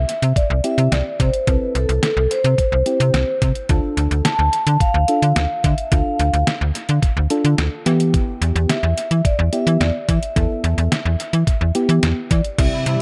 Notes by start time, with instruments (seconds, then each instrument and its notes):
Already playing: vibraphone E5
0.09 closed hi-hat
0.22 fm bass C3, closed hi-hat
0.36 vibraphone D5, kick, closed hi-hat
0.50 fm bass C2
0.64 fm electric piano C4 E4 G4, vibraphone E5, closed hi-hat
0.78 fm bass C3, closed hi-hat
0.92 fm bass C2, vibraphone D5, snare, closed hi-hat
1.19 fm bass C3, vibraphone C5, kick, closed hi-hat
1.34 closed hi-hat
1.47 fm bass C2, fm electric piano C4 E4 A4, vibraphone B4, kick, closed hi-hat
1.75 fm bass C2, vibraphone A4, closed hi-hat
1.89 fm bass C2, closed hi-hat
2.03 vibraphone A4, snare, closed hi-hat
2.17 fm bass C2
2.31 vibraphone C5, closed hi-hat
2.44 fm bass C3, closed hi-hat
2.58 kick, closed hi-hat
2.72 fm bass C2
2.86 fm electric piano C4 E4 G4, closed hi-hat
3.00 fm bass C3, closed hi-hat
3.14 fm bass C2, snare, closed hi-hat
3.42 fm bass C3, kick, closed hi-hat
3.55 closed hi-hat
3.69 fm bass D2, fm electric piano D4 F4 A4, kick, closed hi-hat
3.97 fm bass D2, closed hi-hat
4.11 fm bass D2, closed hi-hat
4.25 vibraphone A5, snare, closed hi-hat
4.39 fm bass D2
4.53 closed hi-hat
4.67 fm bass D3, closed hi-hat
4.80 vibraphone F5, kick, closed hi-hat
4.94 fm bass D2
5.08 fm electric piano D4 F4 A4, closed hi-hat
5.22 fm bass D3, closed hi-hat
5.36 fm bass D2, snare, closed hi-hat
5.64 fm bass D3, vibraphone E5, kick, closed hi-hat
5.78 closed hi-hat
5.92 fm bass D2, fm electric piano D4 F4 A4, vibraphone F5, kick, closed hi-hat
6.19 fm bass D2, closed hi-hat
6.33 fm bass D2, closed hi-hat
6.47 snare, closed hi-hat
6.61 fm bass D2
6.75 closed hi-hat
6.89 fm bass D3, closed hi-hat
7.03 kick, closed hi-hat
7.17 fm bass D2
7.30 fm electric piano D4 F4 A4, closed hi-hat
7.45 fm bass D3, closed hi-hat
7.58 fm bass D2, snare, closed hi-hat
7.86 fm bass E3, fm electric piano B3 E4 G4, closed hi-hat
8.00 closed hi-hat
8.14 kick, closed hi-hat
8.42 fm bass E2, closed hi-hat
8.56 fm bass E2, closed hi-hat
8.70 vibraphone E5, snare, closed hi-hat
8.83 fm bass E2
8.98 closed hi-hat
9.11 fm bass E3, closed hi-hat
9.25 vibraphone D5, kick, closed hi-hat
9.39 fm bass E2
9.53 fm electric piano B3 E4 G4, vibraphone E5, closed hi-hat
9.67 fm bass E3, closed hi-hat
9.80 fm bass E2, vibraphone D5, snare, closed hi-hat
10.08 fm bass E3, vibraphone E5, kick, closed hi-hat
10.23 closed hi-hat
10.36 fm bass E2, fm electric piano B3 E4 A4, kick, closed hi-hat
10.64 fm bass E2, closed hi-hat
10.78 fm bass E2, closed hi-hat
10.92 snare, closed hi-hat
11.05 fm bass E2
11.20 closed hi-hat
11.33 fm bass E3, closed hi-hat
11.47 kick, closed hi-hat
11.61 fm bass E2
11.75 fm electric piano B3 E4 G4, closed hi-hat
11.89 fm bass E3, closed hi-hat
12.03 fm bass E2, snare, closed hi-hat
12.31 fm bass E3, vibraphone D5, kick, closed hi-hat
12.44 closed hi-hat
12.58 fm bass C2, analog synth pad C3 G3 E4, fm electric piano C4 E4 G4, vibraphone E5, kick, closed hi-hat, crash
12.86 fm bass C3, vibraphone E5, closed hi-hat